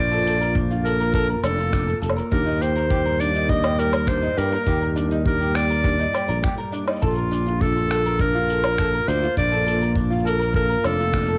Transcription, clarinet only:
0.00 0.55 D5 loud
0.84 1.12 A#4 loud
1.14 1.27 A#4 loud
1.43 1.98 A4 loud
2.32 2.63 A#4 medium
2.61 3.21 C5 medium
3.20 3.51 D5 loud
3.49 3.80 D#5 loud
3.79 4.10 A#4 loud
4.08 4.39 C5 medium
4.38 4.96 A#4 medium
5.26 5.57 A#4 medium
5.55 6.44 D5 loud
7.02 7.63 F4 medium
7.61 8.22 A4 loud
8.20 9.10 A#4 loud
9.08 9.37 C5 loud
9.38 9.92 D5 loud
10.26 10.53 A#4 loud
10.55 10.87 A#4 loud
10.85 11.38 A4 loud

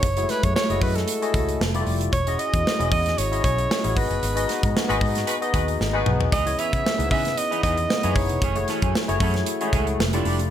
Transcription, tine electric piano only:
0.17 0.23 G#3 medium
0.17 0.64 E4 medium
0.17 0.64 F#4 medium
0.17 0.64 G#4 medium
0.17 0.64 C#5 medium
0.23 0.67 A3 medium
0.69 1.16 A3 medium
0.69 1.16 E4 medium
0.69 1.16 F#4 medium
0.69 1.16 G#4 medium
0.69 1.16 D#5 medium
1.22 1.60 A3 medium
1.22 1.60 E4 medium
1.22 1.60 F#4 medium
1.22 1.61 D#5 medium
1.22 1.61 G#5 medium
1.74 1.80 G3 medium
1.74 2.13 E4 medium
1.74 2.13 F4 medium
1.74 2.13 G4 medium
1.74 2.13 D5 loud
1.81 2.16 A3 loud
2.27 2.73 C#4 medium
2.27 2.74 E4 medium
2.27 2.74 F#4 medium
2.27 2.74 G#4 medium
2.27 2.74 D#5 loud
2.79 3.26 C#4 medium
2.79 3.26 E4 medium
2.79 3.26 F#4 medium
2.79 3.26 G#4 medium
2.79 3.26 D#5 medium
3.31 3.78 C#4 medium
3.31 3.78 E4 medium
3.31 3.78 F#4 medium
3.31 3.79 G#4 medium
3.31 3.79 D#5 medium
3.84 3.96 C#4 medium
3.84 3.96 E4 medium
3.84 3.95 F#4 medium
3.84 3.95 G#4 medium
3.84 3.96 C#5 medium
3.95 4.32 B3 medium
3.95 4.32 D#4 medium
3.95 4.32 F#4 medium
3.95 4.32 G#4 medium
3.95 4.32 D#5 medium
4.35 4.83 B3 medium
4.35 4.83 D#4 medium
4.35 4.83 F#4 medium
4.35 4.83 G#4 medium
4.35 4.83 D#5 loud
4.88 5.35 B3 medium
4.88 5.35 D#4 medium
4.88 5.35 F#4 medium
4.88 5.36 G#4 medium
4.88 5.36 D#5 loud
5.41 5.88 B3 medium
5.41 5.88 D#4 medium
5.41 5.88 F#4 medium
5.41 5.88 G#4 medium
5.41 5.88 D#5 loud
5.93 6.32 B3 loud
5.93 6.32 D#4 medium
5.93 6.32 F#4 medium
5.93 6.32 G#4 medium
5.93 6.32 F#5 medium
6.46 6.92 B3 medium
6.46 6.93 C#4 medium
6.46 6.93 E4 medium
6.46 6.93 G#4 medium
6.46 6.93 C#5 medium
6.98 7.45 B3 medium
6.98 7.45 D#4 medium
6.98 7.45 E4 medium
6.98 7.45 G#4 medium
6.98 7.45 B4 medium
7.50 7.97 B3 medium
7.50 7.97 D#4 medium
7.50 7.97 E4 medium
7.50 7.97 G#4 medium
7.50 7.98 D#5 medium
8.03 8.42 B3 medium
8.03 8.42 D#4 medium
8.03 8.42 E4 medium
8.03 8.42 G#4 medium
8.03 8.42 C#5 medium
8.55 9.02 A3 medium
8.55 9.02 E4 medium
8.55 9.02 F#4 medium
8.55 9.03 G#4 medium
8.55 9.03 C#5 loud
9.08 9.55 A3 medium
9.08 9.55 E4 medium
9.08 9.55 F#4 medium
9.08 9.55 G#4 medium
9.08 9.55 C#5 loud
9.61 9.67 G#3 medium
9.61 9.99 E4 medium
9.61 9.99 F#4 medium
9.61 10.00 G#4 medium
9.61 10.00 C#5 medium
9.67 10.02 A3 medium
10.13 10.50 A3 loud
10.13 10.50 E4 medium
10.13 10.50 F4 medium
10.13 10.50 G4 medium
10.13 10.50 D5 loud

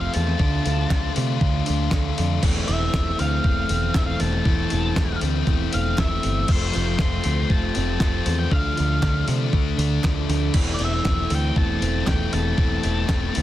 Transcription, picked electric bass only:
0.16 0.35 E2 medium
0.40 0.60 D2 medium
0.66 0.85 D2 loud
0.91 1.10 D2 medium
1.17 1.36 C3 medium
1.41 1.61 D2 medium
1.69 1.88 D2 loud
1.93 2.12 D2 loud
2.19 2.38 F2 medium
2.43 2.62 E1 medium
2.68 2.88 E1 loud
2.93 3.13 E1 medium
3.20 3.39 D2 medium
3.45 3.64 E1 medium
3.70 3.89 E1 loud
3.94 4.14 E1 loud
4.21 4.40 E1 medium
4.46 4.66 E1 medium
4.72 4.92 E1 loud
4.96 5.16 E1 medium
5.22 5.42 D2 medium
5.47 5.67 E1 medium
5.74 5.94 E1 medium
5.99 6.18 E1 loud
6.25 6.44 G1 medium
6.50 6.69 F1 medium
6.76 6.95 F1 medium
6.99 7.19 F1 medium
7.25 7.45 D2 medium
7.50 7.70 F1 medium
7.77 7.96 F1 loud
8.01 8.21 F1 medium
8.27 8.46 E2 medium
8.52 8.72 D2 medium
8.80 8.99 D2 loud
9.03 9.23 D2 medium
9.28 9.48 C3 medium
9.54 9.74 D2 medium
9.78 9.98 D2 loud
10.04 10.24 D2 medium
10.29 10.49 D2 loud
10.55 10.75 E1 medium
10.79 10.99 E1 medium
11.05 11.25 E1 loud
11.31 11.51 D2 medium
11.57 11.77 E1 medium
11.82 12.02 E1 medium
12.07 12.27 E1 loud
12.33 12.53 E1 medium
12.58 12.78 E1 medium
12.85 13.04 E1 loud
13.09 13.29 E1 medium
13.37 13.42 D2 medium

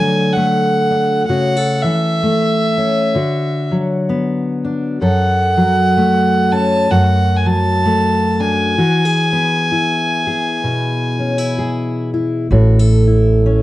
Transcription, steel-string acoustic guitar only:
0.00 1.24 D3 medium
0.00 1.24 F#3 soft
0.00 0.35 A3 soft
0.00 0.89 D4 soft
0.00 1.28 F#4 medium
0.36 2.22 A3 soft
0.91 1.24 D4 soft
1.29 1.84 C#3 medium
1.29 1.57 F#4 medium
1.57 3.15 A4 soft
1.84 3.16 E3 soft
2.23 3.16 A3 medium
2.78 3.16 C#4 soft
3.15 4.98 D3 medium
3.15 5.01 F#4 soft
3.71 4.99 F#3 medium
4.09 4.98 B3 medium
4.65 4.98 D4 soft
5.01 6.89 F#2 medium
5.01 6.85 A4 medium
5.57 6.85 F#3 medium
5.97 7.84 A3 medium
6.52 6.91 C#4 soft
6.91 8.78 F#2 medium
6.91 8.77 F#4 medium
7.46 8.73 F#3 medium
7.85 8.78 A3 soft
8.40 8.73 D4 soft
8.78 13.62 E3 medium
8.78 9.05 F#4 medium
9.05 10.26 G#4 soft
9.33 12.47 B3 soft
9.72 11.19 E4 soft
10.27 11.57 G#4 soft
10.64 12.51 B2 medium
11.19 11.38 C#4 soft
11.38 12.12 E4 soft
11.59 12.47 G#4 medium
12.14 12.47 E4 soft
12.51 13.62 A2 medium
12.51 12.79 F#4 medium
12.79 13.62 A4 soft
13.07 13.62 E4 soft
13.46 13.62 C#4 soft

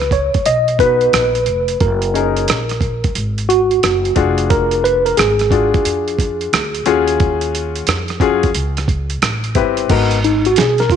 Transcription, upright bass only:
0.00 0.31 C#2 medium
0.35 muted upright bass stroke soft
0.46 1.10 B1 medium
1.13 1.45 A#1 medium
1.47 1.79 F1 medium
1.81 2.45 F#1 medium
2.48 3.01 A#1 medium
3.04 muted upright bass stroke soft
3.15 3.79 G#1 medium
3.83 4.15 F#1 medium
4.16 5.14 F1 medium
5.18 5.71 G#1 medium
5.85 6.49 F2 medium
6.53 6.85 D2 medium
6.86 7.83 D#2 medium
7.87 8.51 F2 medium
8.55 9.19 C#2 medium
9.22 9.54 A1 medium
9.55 9.88 G1 medium
9.90 10.54 G#1 medium
10.57 10.96 B1 medium

